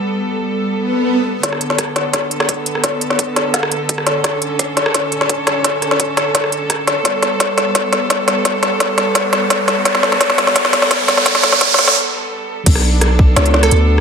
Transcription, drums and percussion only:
1.43 kick medium
1.43 snare soft
1.43 closed hi-hat medium
1.53 cross-stick medium
1.61 closed hi-hat soft
1.70 snare soft
1.78 kick medium
1.78 cross-stick medium
1.78 closed hi-hat medium
1.96 snare soft
1.96 closed hi-hat soft
2.13 kick medium
2.13 cross-stick medium
2.13 snare medium
2.13 closed hi-hat medium
2.31 closed hi-hat soft
2.40 cross-stick medium
2.40 snare soft
2.49 kick medium
2.49 closed hi-hat medium
2.66 closed hi-hat soft
2.75 cross-stick medium
2.84 kick loud
2.84 snare medium
2.84 closed hi-hat medium
3.01 closed hi-hat soft
3.10 snare soft
3.19 kick loud
3.19 closed hi-hat medium
3.36 cross-stick medium
3.36 snare medium
3.36 closed hi-hat soft
3.54 kick loud
3.54 snare medium
3.54 closed hi-hat medium
3.63 cross-stick medium
3.72 closed hi-hat soft
3.89 kick loud
3.89 closed hi-hat medium
3.98 cross-stick medium
4.07 snare medium
4.07 closed hi-hat soft
4.24 kick loud
4.24 cross-stick medium
4.24 snare medium
4.24 closed hi-hat medium
4.42 closed hi-hat soft
4.59 kick loud
4.59 cross-stick soft
4.59 closed hi-hat medium
4.77 snare medium
4.77 closed hi-hat soft
4.86 cross-stick medium
4.94 kick medium
4.94 snare medium
4.94 closed hi-hat medium
5.12 closed hi-hat soft
5.21 cross-stick medium
5.21 snare medium
5.29 kick medium
5.29 closed hi-hat medium
5.47 cross-stick medium
5.47 snare medium
5.47 closed hi-hat soft
5.64 kick loud
5.64 snare medium
5.64 closed hi-hat medium
5.82 cross-stick soft
5.82 closed hi-hat soft
5.91 snare medium
6.00 kick loud
6.00 closed hi-hat medium
6.17 cross-stick medium
6.17 snare medium
6.17 closed hi-hat soft
6.35 kick loud
6.35 snare medium
6.35 closed hi-hat medium
6.44 cross-stick soft
6.52 closed hi-hat soft
6.70 kick medium
6.70 cross-stick medium
6.70 closed hi-hat medium
6.87 snare medium
6.87 closed hi-hat soft
7.05 kick loud
7.05 snare medium
7.05 closed hi-hat medium
7.23 snare medium
7.23 closed hi-hat soft
7.40 kick loud
7.40 snare medium
7.40 closed hi-hat medium
7.58 snare medium
7.58 closed hi-hat soft
7.75 kick medium
7.75 snare medium
7.75 closed hi-hat medium
7.93 snare medium
7.93 closed hi-hat soft
8.10 kick loud
8.10 snare medium
8.10 closed hi-hat medium
8.28 snare medium
8.28 closed hi-hat soft
8.45 kick loud
8.45 snare medium
8.45 closed hi-hat medium
8.63 snare medium
8.63 closed hi-hat soft
8.80 kick loud
8.80 snare medium
8.80 closed hi-hat medium
8.98 snare medium
8.98 closed hi-hat soft
9.15 kick loud
9.15 snare medium
9.15 closed hi-hat medium
9.33 snare medium
9.33 closed hi-hat soft
9.50 kick medium
9.50 snare medium
9.50 closed hi-hat medium
9.68 snare medium
9.68 closed hi-hat soft
9.85 kick loud
9.85 snare medium
9.85 closed hi-hat medium
9.95 snare medium
10.03 snare medium
10.12 snare medium
10.21 kick loud
10.21 snare medium
10.21 closed hi-hat medium
10.30 snare medium
10.38 snare loud
10.38 closed hi-hat soft
10.47 snare medium
10.56 kick loud
10.56 snare loud
10.56 closed hi-hat medium
10.65 snare medium
10.73 snare medium
10.73 closed hi-hat soft
10.82 snare medium
10.91 kick loud
10.91 snare loud
10.91 closed hi-hat medium
11.08 snare loud
11.08 closed hi-hat soft
11.17 snare medium
11.26 kick loud
11.26 snare loud
11.26 closed hi-hat medium
11.35 snare medium
11.43 snare loud
11.43 closed hi-hat soft
11.52 snare medium
11.61 kick loud
11.61 snare loud
11.61 closed hi-hat medium
11.74 snare medium
11.79 snare loud
11.79 closed hi-hat soft
11.88 snare medium
12.66 kick loud
12.66 closed hi-hat medium
12.66 crash loud
12.75 cross-stick medium
13.01 cross-stick medium
13.01 closed hi-hat medium
13.19 kick loud
13.36 cross-stick medium
13.36 snare loud
13.36 closed hi-hat medium
13.46 closed hi-hat soft
13.54 snare medium
13.63 cross-stick medium
13.63 closed hi-hat soft
13.71 closed hi-hat medium

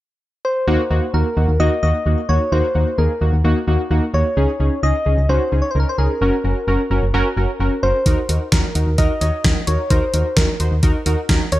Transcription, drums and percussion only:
8.06 kick loud
8.06 closed hi-hat medium
8.29 closed hi-hat medium
8.52 kick loud
8.52 snare loud
8.52 closed hi-hat medium
8.75 closed hi-hat medium
8.98 kick loud
8.98 closed hi-hat medium
9.21 closed hi-hat medium
9.44 kick loud
9.44 snare loud
9.44 closed hi-hat medium
9.67 closed hi-hat medium
9.90 kick loud
9.90 closed hi-hat medium
10.14 closed hi-hat medium
10.37 kick loud
10.37 snare loud
10.37 closed hi-hat medium
10.60 closed hi-hat medium
10.83 kick loud
10.83 closed hi-hat medium
11.06 closed hi-hat medium
11.29 kick loud
11.29 snare loud
11.29 closed hi-hat medium
11.52 closed hi-hat medium

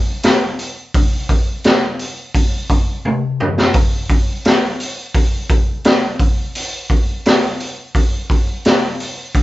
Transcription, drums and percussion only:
0.23 snare loud
0.23 open hi-hat medium
0.59 open hi-hat soft
0.94 kick loud
0.94 open hi-hat medium
1.29 kick medium
1.29 open hi-hat medium
1.64 snare loud
1.64 open hi-hat medium
1.99 open hi-hat soft
2.35 kick medium
2.35 open hi-hat medium
2.70 kick medium
2.70 open hi-hat soft
3.05 high tom soft
3.40 mid tom medium
3.58 snare medium
3.74 kick loud
3.74 open hi-hat medium
4.10 kick medium
4.10 open hi-hat soft
4.45 snare medium
4.45 open hi-hat medium
4.80 open hi-hat medium
5.14 kick medium
5.14 open hi-hat medium
5.50 kick medium
5.50 open hi-hat medium
5.84 snare loud
5.84 open hi-hat medium
6.19 kick medium
6.19 open hi-hat soft
6.55 open hi-hat medium
6.90 kick medium
6.90 open hi-hat soft
7.25 snare loud
7.25 open hi-hat medium
7.60 open hi-hat soft
7.95 kick medium
7.95 open hi-hat medium
8.30 kick medium
8.30 open hi-hat soft
8.65 snare loud
8.65 open hi-hat medium
9.00 open hi-hat soft
9.35 kick medium
9.35 open hi-hat medium

